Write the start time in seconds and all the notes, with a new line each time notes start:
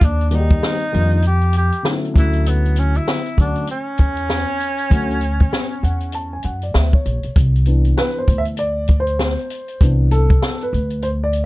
0.01 D#2 D4, kick, closed hi-hat
0.21 closed hi-hat
0.29 D#3 G3 A#3 D4 D5, closed hi-hat
0.33 D#4 F#4
0.40 G4
0.50 kick, closed hi-hat
0.63 snare
0.92 F2 D#3 G3 A#3 D4 F4, closed hi-hat
1.10 closed hi-hat
1.22 closed hi-hat
1.27 G4
1.41 closed hi-hat
1.53 closed hi-hat
1.57 G4
1.72 closed hi-hat
1.83 D3 F#3 A3 C#4 D#4, snare
1.93 E4
2.05 closed hi-hat
2.14 D2 D3 F#3 A3 C#4 E4, kick, closed hi-hat
2.19 E4
2.33 closed hi-hat
2.46 B3, closed hi-hat
2.65 closed hi-hat
2.76 C#4, closed hi-hat
2.95 E4, closed hi-hat
3.08 snare
3.26 closed hi-hat
3.37 D2 D3 F#3 A3 C#4 D4 F#4, kick, closed hi-hat
3.55 closed hi-hat
3.67 C#4, closed hi-hat
3.98 E2, kick, closed hi-hat
4.17 closed hi-hat
4.30 snare
4.60 closed hi-hat
4.78 closed hi-hat
4.90 D2 D3 F#3 A3 C#4 F#4, kick, closed hi-hat
5.11 closed hi-hat
5.21 closed hi-hat
5.40 kick, closed hi-hat
5.53 snare
5.83 E2 F#5, closed hi-hat
6.00 closed hi-hat
6.12 A5, closed hi-hat
6.33 G#5
6.43 F#2 F#5, closed hi-hat
6.62 D5, closed hi-hat
6.74 D2 E5, snare
6.93 C#5, kick
7.06 A#1, closed hi-hat
7.23 B1, closed hi-hat
7.36 C2, kick, closed hi-hat
7.56 closed hi-hat
7.66 E3 B3 D4, closed hi-hat
7.85 closed hi-hat
7.97 B4, snare
8.19 C5
8.28 D2, kick, closed hi-hat
8.38 E5
8.45 closed hi-hat
8.57 D5, closed hi-hat
8.88 kick, closed hi-hat
9.00 C5
9.07 closed hi-hat
9.19 snare
9.39 closed hi-hat
9.50 closed hi-hat
9.68 closed hi-hat
9.81 C2 E3 B3 D4, kick, closed hi-hat
10.11 A4, closed hi-hat
10.30 kick, closed hi-hat
10.42 snare
10.61 B4, closed hi-hat
10.73 D2, closed hi-hat
10.90 closed hi-hat
11.02 C5, closed hi-hat
11.24 D5
11.33 closed hi-hat